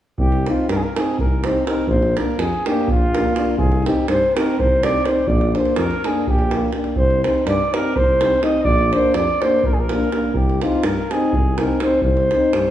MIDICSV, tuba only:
0, 0, Header, 1, 2, 480
1, 0, Start_track
1, 0, Key_signature, -3, "minor"
1, 0, Tempo, 483481
1, 188, Time_signature, 7, 3, 24, 8
1, 12615, End_track
2, 0, Start_track
2, 0, Title_t, "Tuba"
2, 0, Program_c, 0, 58
2, 185, Note_on_c, 0, 36, 82
2, 460, Note_off_c, 0, 36, 0
2, 682, Note_on_c, 0, 43, 84
2, 833, Note_off_c, 0, 43, 0
2, 1181, Note_on_c, 0, 36, 63
2, 1559, Note_off_c, 0, 36, 0
2, 1860, Note_on_c, 0, 34, 90
2, 2136, Note_off_c, 0, 34, 0
2, 2359, Note_on_c, 0, 41, 74
2, 2512, Note_off_c, 0, 41, 0
2, 2874, Note_on_c, 0, 34, 62
2, 3248, Note_off_c, 0, 34, 0
2, 3553, Note_on_c, 0, 36, 87
2, 3826, Note_off_c, 0, 36, 0
2, 4050, Note_on_c, 0, 43, 74
2, 4199, Note_off_c, 0, 43, 0
2, 4555, Note_on_c, 0, 36, 63
2, 4928, Note_off_c, 0, 36, 0
2, 5241, Note_on_c, 0, 34, 95
2, 5511, Note_off_c, 0, 34, 0
2, 5731, Note_on_c, 0, 41, 80
2, 5880, Note_off_c, 0, 41, 0
2, 6232, Note_on_c, 0, 34, 67
2, 6606, Note_off_c, 0, 34, 0
2, 6914, Note_on_c, 0, 36, 80
2, 7186, Note_off_c, 0, 36, 0
2, 7407, Note_on_c, 0, 43, 86
2, 7556, Note_off_c, 0, 43, 0
2, 7896, Note_on_c, 0, 36, 63
2, 8274, Note_off_c, 0, 36, 0
2, 8593, Note_on_c, 0, 34, 92
2, 8865, Note_off_c, 0, 34, 0
2, 9076, Note_on_c, 0, 41, 78
2, 9228, Note_off_c, 0, 41, 0
2, 9573, Note_on_c, 0, 34, 55
2, 9952, Note_off_c, 0, 34, 0
2, 10255, Note_on_c, 0, 36, 76
2, 10531, Note_off_c, 0, 36, 0
2, 10760, Note_on_c, 0, 43, 73
2, 10910, Note_off_c, 0, 43, 0
2, 11244, Note_on_c, 0, 36, 67
2, 11625, Note_off_c, 0, 36, 0
2, 11934, Note_on_c, 0, 36, 76
2, 12210, Note_off_c, 0, 36, 0
2, 12441, Note_on_c, 0, 43, 72
2, 12591, Note_off_c, 0, 43, 0
2, 12615, End_track
0, 0, End_of_file